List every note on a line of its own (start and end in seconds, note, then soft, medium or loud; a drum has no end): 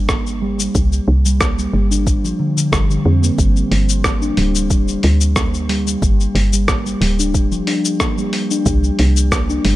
0.00 0.69 G1 medium
0.09 0.26 A#3 medium
0.09 kick loud
0.09 cross-stick loud
0.09 cabasa medium
0.27 cabasa soft
0.42 0.58 G3 medium
0.59 1.24 G3 medium
0.59 cabasa medium
0.75 1.00 C2 loud
0.75 kick loud
0.75 cabasa medium
0.92 cabasa soft
1.08 1.68 C2 loud
1.26 1.39 G3 medium
1.26 cabasa medium
1.41 1.58 A#3 medium
1.41 kick loud
1.41 cross-stick medium
1.41 cabasa medium
1.59 1.73 G3 medium
1.59 cabasa soft
1.73 2.33 G1 medium
1.73 1.91 G3 loud
1.91 2.00 D4 medium
1.91 cabasa medium
2.07 2.17 G3 medium
2.07 kick loud
2.07 cabasa medium
2.24 2.39 F3 medium
2.24 cabasa soft
2.39 2.56 D3 medium
2.57 2.71 D3 medium
2.57 cabasa medium
2.72 2.98 G1 medium
2.72 2.88 G3 medium
2.72 kick loud
2.72 cross-stick medium
2.72 cabasa medium
2.90 3.04 D3 medium
2.90 cabasa soft
3.05 3.31 F2 medium
3.05 3.21 C4 medium
3.23 3.37 A#3 medium
3.23 cabasa medium
3.38 3.64 G1 loud
3.38 4.03 G3 medium
3.38 kick loud
3.38 cabasa medium
3.57 cabasa soft
3.72 4.31 G1 medium
3.72 open hi-hat medium
3.89 cabasa medium
4.04 4.21 A#3 medium
4.04 kick loud
4.04 cross-stick medium
4.04 cabasa medium
4.22 4.31 D4 medium
4.22 cabasa soft
4.37 4.97 D1 medium
4.37 4.54 G3 loud
4.37 open hi-hat medium
4.55 cabasa medium
4.70 5.35 G3 medium
4.70 kick medium
4.70 cabasa medium
4.88 cabasa soft
5.03 5.96 D2 medium
5.03 open hi-hat medium
5.21 cabasa medium
5.36 5.53 A#3 medium
5.36 kick loud
5.36 cross-stick medium
5.36 cabasa medium
5.54 cabasa soft
5.69 5.86 G3 medium
5.69 open hi-hat medium
5.87 6.51 G3 medium
5.87 cabasa medium
6.02 6.28 G1 loud
6.02 kick loud
6.02 cabasa soft
6.20 cabasa soft
6.35 6.95 G1 medium
6.35 open hi-hat medium
6.53 6.67 G3 medium
6.53 cabasa medium
6.68 kick loud
6.68 cross-stick medium
6.68 cabasa medium
6.86 7.00 G3 medium
6.86 cabasa soft
7.01 7.61 D1 medium
7.01 7.18 G3 medium
7.01 open hi-hat medium
7.19 7.28 D4 medium
7.19 cabasa medium
7.34 7.44 G3 medium
7.34 kick medium
7.34 cabasa medium
7.52 7.66 F3 medium
7.52 cabasa soft
7.67 7.99 D4 medium
7.67 open hi-hat medium
7.85 cabasa medium
8.00 8.17 A#3 medium
8.00 kick loud
8.00 cross-stick medium
8.00 cabasa medium
8.18 8.49 G3 medium
8.18 cabasa soft
8.33 open hi-hat medium
8.51 8.60 D4 medium
8.51 cabasa medium
8.66 8.91 C2 loud
8.66 9.31 G3 medium
8.66 kick medium
8.66 cabasa medium
8.84 cabasa soft
8.99 9.59 C2 loud
8.99 open hi-hat medium
9.16 cabasa medium
9.32 9.49 A#3 medium
9.32 kick medium
9.32 cross-stick medium
9.32 cabasa medium
9.50 9.58 D4 medium
9.50 cabasa soft
9.65 9.76 G1 medium
9.65 9.76 G3 loud
9.65 open hi-hat medium